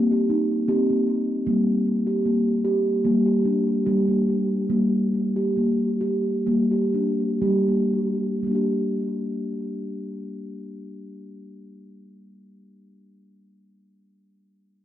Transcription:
Already playing: A#3 C4
0.12 G4
0.30 D#4
0.68 C4 G4
0.90 A#3
1.47 G3 A#3
2.07 G4
2.25 A#3
2.65 G4
3.04 G3 A#3
3.26 G4
3.45 D4
3.86 G3 G4
4.08 A#3
4.70 G3 A#3
5.36 G4
5.57 A#3
6.01 G4
6.47 G3 A#3
6.71 G4
6.94 D4
7.42 G3 G4
7.68 A#3
8.43 G3
8.47 A#3 D4
8.55 G4

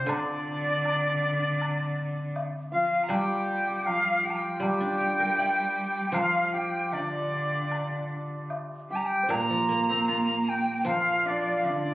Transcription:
Already playing: C4 F4 G4 C5
0.06 D3 D4 D5, high woodblock
0.85 high woodblock
1.61 high woodblock
2.36 low woodblock
2.72 F3 F4 F5
3.03 A#5
3.09 G3 G4 G5, high woodblock
3.66 G4
3.78 G4 G5
3.85 F3 F4 F5, high woodblock
4.24 G4 G5
4.30 A#5
4.36 G5
4.60 G3 G4 G5, high woodblock
4.80 D4
5.00 G4
5.19 A#4
5.38 D5, low woodblock
6.07 G4 G5
6.12 F3 F4 F5, high woodblock
6.53 G4 G5
6.91 D3 D4 D5, high woodblock, low woodblock
7.71 high woodblock
8.50 low woodblock
8.90 G3 G4 G5
8.96 A#5
9.06 G5
9.23 C5
9.29 A#2 A#3 A#4 A#5, high woodblock
9.50 F3
9.69 A#3
9.90 C4
10.08 F4, high woodblock
10.49 G5
10.85 F3 F4 F5, high woodblock
11.25 D4 D5
11.56 F5
11.63 D3 D4 D5, low woodblock
11.72 D4
11.79 D4
11.88 D4

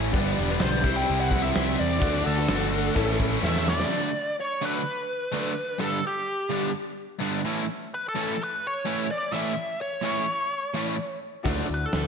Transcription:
Already playing: A1 A2 E3 A3 C#4 E4
0.11 G1 G2 D3 G3 B3 D4 G4 B4, kick, crash
0.16 D4
0.37 E1 G3 B3 D4, snare, crash
0.48 D4 G4 B4, snare
0.60 B1 D3 G3 B3 C5, snare, crash
0.64 D4
0.71 D4 G4 B4
0.83 C2 C3 G3 C4 E4 G4 C5, kick, crash
0.96 G5
1.06 C2 C3 G3 C4 E4, crash
1.20 F#5
1.31 C2 G3 C4 E4, kick, crash
1.42 E5
1.53 C2 C3 G3 C4 E4, snare, crash
1.79 E2 D5, crash
1.99 D2 D3 A3 D4 F#4 A4, kick, crash
2.24 D2 A3 D4 F#4 A4, crash
2.36 D4 F#4 B4
2.48 G1 D3 A3 D4 F#4, snare, crash
2.59 D4 F#4 A4
2.72 A3 D4 F#4, crash
2.94 A1 A2 E3 A3 C#4 E4 A4, kick, crash
3.18 A3 C#4 E4, kick, crash
3.42 E2 E3 A3 C#4 E4 E5, snare
3.56 snare
3.68 D5, snare
3.80 snare
3.90 D3 F#3 A3 D4
4.40 C#5
4.62 D3 F#3 A3 D4 B4
5.32 D3 F#3 A3 D4
5.78 G2 D3 G3 B3 D4 A4
6.07 G4
6.50 G2 D3 G3 B3 D4
7.19 G2 D3 G3 B3 D4
7.44 A2 E3 A3 C#4 E4
7.94 B4
8.09 A4
8.15 A2 E3 A3 C#4 E4
8.44 B4
8.67 C#5
8.85 A2 E3 A3 C#4 E4
9.11 D5
9.33 A2 E3 A3 C#4 E4 E5
9.81 C#5
10.03 A2 E3 A3 C#4 E4
10.74 A2 E3 A3 C#4 E4
11.43 D2 D3 F#3 D4 E4 F#4, kick, open hi-hat
11.47 A3 D4
11.69 D2, open hi-hat
11.74 B4
11.86 A4
11.93 D2, snare, open hi-hat

